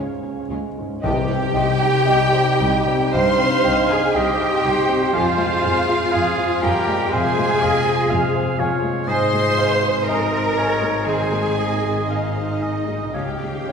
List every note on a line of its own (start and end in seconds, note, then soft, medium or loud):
0.00 1.00 C#2 soft
0.00 0.78 G#2 soft
0.00 0.56 C#3 medium
0.00 0.51 G#3 soft
0.00 0.64 G#3 medium
0.00 1.07 G#3 soft
0.00 0.23 C#4 soft
0.00 0.64 C#4 medium
0.00 1.07 C#4 soft
0.00 0.29 F4 medium
0.00 1.08 G#4 soft
0.00 0.39 C#5 soft
0.00 0.49 C#5 medium
0.00 0.77 C#5 soft
0.00 0.21 G#5 soft
0.00 0.49 C#6 soft
0.23 0.67 C#4 soft
0.23 1.07 G#5 soft
0.50 0.58 C#2 medium
0.50 0.58 C#3 medium
0.50 0.58 G#3 soft
0.50 0.93 G#3 soft
0.50 0.59 C#4 soft
0.50 0.58 F4 medium
0.50 1.08 C#6 soft
0.78 1.04 G#2 soft
0.78 1.08 C#5 soft
1.02 1.12 C2 medium
1.02 3.10 C2 medium
1.02 2.56 C3 loud
1.02 4.95 C3 medium
1.02 5.09 G3 loud
1.02 5.09 D#4 medium
1.02 3.09 G4 loud
1.02 3.10 G4 loud
1.02 1.18 D#5 medium
1.02 3.09 G5 loud
1.02 3.10 G5 loud
1.02 1.15 G5 medium
1.31 1.71 C4 medium
1.54 1.62 C2 medium
1.54 3.64 D#4 medium
1.54 1.96 C5 medium
1.54 1.70 D#5 medium
1.54 1.67 G5 medium
1.81 2.22 D#4 medium
2.05 2.14 C2 medium
2.05 2.21 D#5 medium
2.05 2.48 D#5 medium
2.05 2.59 D#5 medium
2.05 2.18 G5 medium
2.33 2.76 C5 medium
2.33 4.40 C6 medium
2.58 2.67 C2 medium
2.58 3.03 D#4 medium
2.58 2.75 D#5 medium
2.58 4.15 D#5 medium
2.58 2.70 G5 medium
2.88 3.30 C4 medium
3.12 3.21 C2 medium
3.12 3.55 G2 medium
3.12 5.18 G3 medium
3.12 3.90 C5 loud
3.12 3.28 D#5 medium
3.12 4.17 F5 loud
3.12 3.24 G5 medium
3.12 3.90 C6 loud
3.39 3.80 C4 medium
3.64 3.74 C2 medium
3.64 4.05 C5 medium
3.64 3.80 D#5 medium
3.64 3.75 G5 medium
3.89 4.30 D#4 medium
3.89 4.15 G#4 loud
3.89 4.16 G#4 loud
3.89 4.14 G#5 medium
3.89 4.16 G#5 loud
4.13 4.24 C2 medium
4.13 5.14 G4 loud
4.13 4.30 D#5 medium
4.13 4.55 D#5 medium
4.13 4.68 D#5 medium
4.13 4.25 G5 medium
4.13 5.13 G5 loud
4.13 5.14 G5 loud
4.40 4.79 C5 medium
4.40 6.37 C6 medium
4.63 4.73 C2 medium
4.63 5.04 D#4 medium
4.63 6.14 C5 loud
4.63 4.79 D#5 medium
4.63 5.18 D#5 medium
4.63 4.75 G5 medium
4.89 5.14 C4 medium
5.13 7.07 F2 medium
5.13 9.05 F2 medium
5.13 5.23 F2 medium
5.13 8.92 F3 medium
5.13 6.59 F4 loud
5.13 8.92 F4 medium
5.13 6.60 F4 loud
5.13 6.58 F5 loud
5.13 5.30 F5 medium
5.13 6.59 F5 loud
5.13 5.25 G#5 medium
5.37 5.77 G#3 medium
5.37 7.37 G#3 medium
5.61 5.72 F2 medium
5.61 6.01 C5 medium
5.61 5.79 F5 medium
5.61 5.74 G#5 medium
5.87 6.27 G#4 medium
6.12 6.21 F2 medium
6.12 6.61 G#4 medium
6.12 6.52 F5 medium
6.12 6.29 F5 medium
6.12 6.62 F5 medium
6.12 6.24 G#5 medium
6.38 6.77 C5 medium
6.38 8.34 C6 medium
6.60 6.72 F2 medium
6.60 7.12 G3 loud
6.60 7.02 F4 medium
6.60 7.11 G4 loud
6.60 7.14 A#4 medium
6.60 6.79 F5 medium
6.60 8.10 F5 medium
6.60 7.11 G5 loud
6.60 7.12 G5 loud
6.60 6.72 G#5 medium
6.88 7.27 G#3 medium
7.12 7.21 F2 medium
7.12 7.52 C3 medium
7.12 9.13 C3 medium
7.12 8.59 G#4 loud
7.12 7.64 C5 medium
7.12 7.29 F5 medium
7.12 7.23 G#5 medium
7.12 8.59 G#5 loud
7.38 7.76 G#3 medium
7.38 9.33 G#3 medium
7.62 7.70 F2 medium
7.62 9.13 F4 medium
7.62 8.00 C5 medium
7.62 8.11 D#5 loud
7.62 7.78 F5 medium
7.62 7.73 G#5 medium
7.87 8.25 G#4 medium
8.09 8.19 F2 medium
8.09 8.49 F5 medium
8.09 8.61 F5 medium
8.09 8.59 F5 medium
8.09 8.28 F5 medium
8.09 8.21 G#5 medium
8.35 8.74 C5 medium
8.35 10.32 C6 medium
8.59 8.68 F2 medium
8.59 8.98 F4 medium
8.59 9.10 C#5 medium
8.59 8.75 F5 medium
8.59 9.13 F5 medium
8.59 8.71 G#5 medium
8.83 9.08 G#3 medium
9.07 13.10 G#1 medium
9.07 11.02 G#2 medium
9.07 13.00 G#2 medium
9.07 13.10 G#3 medium
9.07 13.10 D#4 medium
9.07 10.04 C5 loud
9.07 9.60 D#5 medium
9.07 9.25 D#5 medium
9.07 9.20 G#5 medium
9.07 10.04 C6 loud
9.33 9.73 G#3 medium
9.33 11.32 G#3 medium
9.58 11.57 D#4 medium
9.58 9.98 C5 medium
9.58 9.74 D#5 medium
9.58 9.90 F5 medium
9.58 9.70 G#5 medium
9.84 10.23 G#4 medium
10.07 11.07 A#4 loud
10.07 10.59 D#5 medium
10.07 10.24 D#5 medium
10.07 10.48 D#5 medium
10.07 10.20 G#5 medium
10.07 11.07 A#5 medium
10.33 10.72 C5 medium
10.33 12.34 C6 medium
10.58 10.97 D#4 medium
10.58 11.07 C#5 medium
10.58 10.74 D#5 medium
10.58 12.07 D#5 medium
10.58 10.69 G#5 medium
10.81 11.21 G#3 medium
11.06 11.47 D#3 medium
11.06 13.18 D#3 medium
11.06 12.08 G#4 medium
11.06 12.08 G#4 loud
11.06 11.57 C5 medium
11.06 11.22 D#5 medium
11.06 12.08 G#5 medium
11.06 12.09 G#5 medium
11.06 11.20 G#5 medium
11.32 11.72 G#3 medium
11.32 13.72 G#3 medium
11.56 13.19 D#4 soft
11.56 11.97 C5 soft
11.56 11.73 D#5 medium
11.56 12.08 D#5 medium
11.56 11.70 G#5 medium
11.83 12.24 G#4 soft
12.08 13.14 D#4 medium
12.08 13.12 D#4 medium
12.08 12.25 D#5 medium
12.08 12.50 D#5 soft
12.08 13.14 D#5 medium
12.08 13.15 D#5 medium
12.08 12.64 F5 medium
12.08 12.20 G#5 medium
12.35 12.76 C5 soft
12.35 13.18 C6 soft
12.61 13.03 D#4 soft
12.61 12.77 D#5 soft
12.61 13.17 D#5 medium
12.61 12.73 G#5 soft
12.87 13.14 G#3 soft
12.87 13.72 F4 soft
13.12 13.72 C#2 medium
13.12 13.72 C#2 soft
13.12 13.72 C#3 soft
13.12 13.72 G#3 medium
13.12 13.72 C#4 medium
13.12 13.72 G4 medium
13.12 13.30 C#5 soft
13.12 13.25 F5 soft
13.12 13.72 F5 medium
13.12 13.72 G5 medium
13.42 13.72 G#3 soft
13.42 13.72 C#4 soft
13.67 13.72 C#5 soft
13.67 13.72 F5 soft